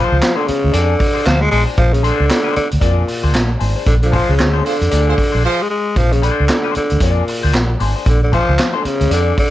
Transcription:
Already playing: F3 D4 G#4 C5
0.12 C#2
0.21 snare, clap, closed hi-hat
0.36 D3 D4 G#4 C5
0.46 C#3, muted clean electric guitar stroke, muted fingered electric bass stroke, closed hi-hat
0.62 D2, muted clean electric guitar stroke
0.72 F2 D3 D4 G#4 D5, closed hi-hat
1.00 kick, open hi-hat
1.14 D4 G#4 C5
1.25 D2 F3, muted clean electric guitar stroke, snare, clap, closed hi-hat
1.40 G#3, muted clean electric guitar stroke
1.51 A#1 G#3 D4 G#4 C5, open hi-hat
1.66 D4 G#4 C5
1.78 A#1 F3, kick, closed hi-hat
1.93 C#3, closed hi-hat
2.03 D3 D4 G#4 C5, closed hi-hat
2.20 C#2
2.29 muted clean electric guitar stroke, snare, clap, closed hi-hat
2.44 D4 G#4 C5
2.56 D3, muted fingered electric bass stroke, closed hi-hat
2.71 D2, muted clean electric guitar stroke, closed hi-hat
2.80 F2 A#2 D4 G#4 D5, kick, closed hi-hat
3.07 muted clean electric guitar stroke, open hi-hat
3.23 D2 D4 G#4 C5
3.34 A#1, muted clean electric guitar stroke, snare, clap, closed hi-hat
3.50 muted clean electric guitar stroke
3.59 G#1 D4 G#4 C5, open hi-hat
3.76 D4 G#4 C5
3.87 A#1 D3, kick, closed hi-hat
4.02 D3 F3, closed hi-hat
4.09 D3 D4 G#4
4.13 F3 C5, kick, open hi-hat
4.29 C#2 C#3
4.39 D2, snare, clap, closed hi-hat
4.53 D4 G#4 C5
4.64 D3 F4 G#4 C5, muted clean electric guitar stroke, open hi-hat
4.80 F2, muted clean electric guitar stroke, closed hi-hat
4.90 D2 D4 G#4 D5, closed hi-hat
5.08 F4 G#4 C5
5.18 muted clean electric guitar stroke, kick, open hi-hat
5.32 A#1 D4 G#4 C5
5.44 F3 F4 G#4 C5
5.62 G#3
5.70 G#3
5.96 A#1 F3, kick, closed hi-hat
6.12 C#3, closed hi-hat
6.22 D3 D4 G#4 C5, closed hi-hat
6.40 C#2
6.48 muted clean electric guitar stroke, snare, clap, closed hi-hat
6.64 D4 G#4 C5
6.75 D3, muted clean electric guitar stroke, muted fingered electric bass stroke, closed hi-hat
6.90 D2, muted clean electric guitar stroke, closed hi-hat
7.00 F2 A#2 D4 G#4 D5, kick, closed hi-hat
7.28 muted clean electric guitar stroke, open hi-hat
7.43 D2 D4 G#4 C5
7.54 A#1, muted clean electric guitar stroke, snare, clap, closed hi-hat
7.69 muted clean electric guitar stroke
7.80 G#1 D4 G#4 C5, open hi-hat
7.96 D4 G#4 C5
8.06 A#1 D3, kick, closed hi-hat
8.23 D3
8.32 F3 D4 G#4 C5, kick, closed hi-hat
8.49 C#2
8.58 muted clean electric guitar stroke, snare, clap, closed hi-hat
8.74 D3 D4 G#4 C5
8.84 C#3, muted clean electric guitar stroke, muted fingered electric bass stroke, closed hi-hat
9.00 D2, muted clean electric guitar stroke, closed hi-hat
9.10 F2 D3 D4 G#4 D5, closed hi-hat
9.37 D3, muted clean electric guitar stroke, kick, open hi-hat

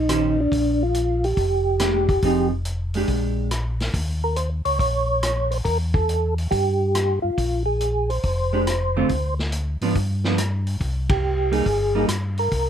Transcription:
Already playing: A#1 D#4
0.09 D#3 C#4 G4 C5, cross-stick, closed hi-hat
0.40 D4
0.51 A#1, kick, open hi-hat
0.83 F4
0.94 closed hi-hat
1.24 G4, open hi-hat
1.37 F1, kick, open hi-hat
1.79 G#3 D4 G4, cross-stick, snare, closed hi-hat
2.09 kick, open hi-hat
2.22 F1 F3 C4 D#4 G#4, kick, open hi-hat
2.65 closed hi-hat
2.94 G#3 D4 G4, open hi-hat
3.08 A#1, kick, open hi-hat
3.51 cross-stick, closed hi-hat
3.80 snare, open hi-hat
3.93 D#2, kick, open hi-hat
4.24 A#4
4.36 C5, closed hi-hat
4.65 C#2 C#5, open hi-hat
4.79 A#1 C#5, kick, open hi-hat
5.23 cross-stick, closed hi-hat
5.51 C5, open hi-hat
5.64 E2 A#4, kick, open hi-hat
5.94 A4, kick
6.09 closed hi-hat
6.38 open hi-hat
6.51 G2 G4, kick, open hi-hat
6.95 cross-stick, closed hi-hat
7.22 G2 F4
7.37 A#1, kick, open hi-hat
7.66 G#4
7.81 closed hi-hat
8.10 C5, open hi-hat
8.23 F1, kick, open hi-hat
8.53 G#3 D4 G4
8.67 cross-stick, closed hi-hat
8.96 D3 A3 C4 F4
9.09 D2, kick, open hi-hat
9.39 snare
9.52 closed hi-hat
9.81 G#2 F3 B3 D4, open hi-hat
9.95 G2, kick, open hi-hat
10.24 F3 B3 D4, snare
10.38 cross-stick, closed hi-hat
10.67 open hi-hat
10.80 C2, kick, open hi-hat
11.09 G4, kick, ride
11.51 G3 A#3 D#4 G#4, open hi-hat
11.66 G1, kick, open hi-hat
11.95 G3 A#3 D#4
12.08 G2, cross-stick, closed hi-hat
12.38 A#4, open hi-hat
12.51 C2, kick, open hi-hat

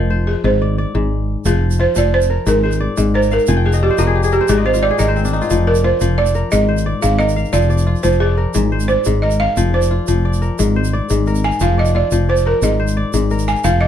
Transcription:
Already playing: F1 F3 G#4 A#4 D#5
0.10 C5
0.27 G#4
0.44 G#1 G#2 C5
0.62 D5
0.78 D5
0.94 G#1 G#2
1.45 F1 F3 G#4, shaker
1.71 shaker
1.79 F4 C5
1.96 F1 F3 D5, shaker
2.14 C5
2.21 shaker
2.30 A#4
2.46 G#1 G#2 A#4, shaker
2.63 G#4 C5
2.72 shaker
2.80 D5
2.97 G#1 G#2, shaker
3.14 A#4 C5
3.23 shaker
3.31 A#4 F5, shaker
3.39 shaker
3.47 F1 F3 G#5, shaker
3.57 G5
3.65 G#4 F5
3.72 D#5, shaker
3.83 G4 D5
3.90 C5
3.98 F1 F3 F4 A#4, shaker
4.07 G#4
4.15 G4
4.23 G#4, shaker
4.31 G4 A#4, shaker
4.41 C5
4.48 G#1 G#2 G#4 D5, shaker
4.58 D#5
4.65 C5 F5
4.74 F4, shaker
4.82 G4 D5
4.91 G#4
4.99 G#1 G#2 A#4 D#5, shaker
5.08 C5
5.16 C4, shaker
5.25 D4, shaker
5.33 D#4
5.42 F4, shaker
5.50 F1 F3, shaker
5.67 A#4 D5
5.75 shaker
5.84 F4 C5
6.01 F1 F3, shaker
6.18 D5
6.26 shaker
6.34 A#4, shaker
6.52 G#1 G#2 D#5, shaker
6.68 C5
6.77 shaker
6.86 D5
7.02 G#1 G#2 F5, shaker
7.19 A#4 D#5, shaker
7.29 shaker
7.36 F5, shaker
7.45 shaker
7.53 F1 F3 D5, shaker
7.70 D5, shaker
7.78 shaker
7.87 F4
7.95 shaker
8.03 F1 F3 C5, shaker
8.20 G#4 D5
8.37 A#4
8.54 G#1 G#2, shaker
8.72 C5
8.80 shaker
8.88 C5 D5
9.05 G#1 G#2, shaker
9.22 A#4 D#5
9.31 shaker
9.40 F5
9.57 F1 F3, shaker
9.74 C5 D5
9.82 shaker
9.91 F4
10.07 F1 F3, shaker
10.25 D5
10.33 shaker
10.42 A#4, shaker
10.59 G#1 G#2, shaker
10.76 C5
10.84 shaker
10.93 D5
11.10 G#1 G#2, shaker
11.27 A#4, shaker
11.35 shaker
11.44 F5 G#5
11.51 shaker
11.60 F1 F3 F5, shaker
11.78 D5 D#5
11.85 shaker
11.95 F4 D5
12.11 F1 F3, shaker
12.29 C5 D5
12.36 shaker
12.46 A#4
12.62 G#1 G#2 D#5, shaker
12.80 C5
12.88 shaker
12.97 D5
13.13 G#1 G#2, shaker
13.30 A#4, shaker
13.39 shaker
13.47 F5 G#5, shaker
13.56 shaker
13.64 F1 F3 F5, shaker
13.81 D5 D#5

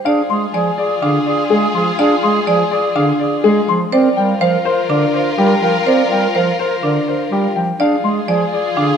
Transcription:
Already playing: C5 G5
0.05 D4 F4 G#4 D5 F5
0.30 G#3 G#4 C6
0.54 F3 G#4 D5 G#5
0.78 G#4 D5
1.02 D3 D4 G#4 F5
1.26 G#4 D5
1.50 G#3 G#4
1.74 F3 G#4 C6
1.99 D4 G#4 D5 F5
2.23 G#3 G#4 C6
2.47 F3 G#4 D5 G#5
2.71 G#4 D5
2.95 D3 D4 G#4 F5
3.20 G#4 D5
3.44 G#3 G#4
3.68 F3 C6
3.92 C4 F4 A#4 C5 D5
4.17 G3 A#4 G5
4.41 F3 A#4 C5 F5
4.65 A#4 C5
4.90 D3 D4 A#4 D5
5.14 A#4 C5
5.38 G3 G4 A#4
5.62 F3 A#4 G5
5.86 C4 A#4 C5 D5
6.11 G3 A#4 G5
6.35 F3 A#4 C5 F5
6.59 A#4 C5
6.83 D3 D4 A#4 D5
7.08 A#4 C5
7.32 G3 G4 A#4
7.56 F3 G5
7.80 D4 F4 G#4 D5 F5
8.04 G#3 G#4 C6
8.28 F3 G#4 D5 G#5
8.52 G#4 D5
8.77 D3 D4 G#4 F5

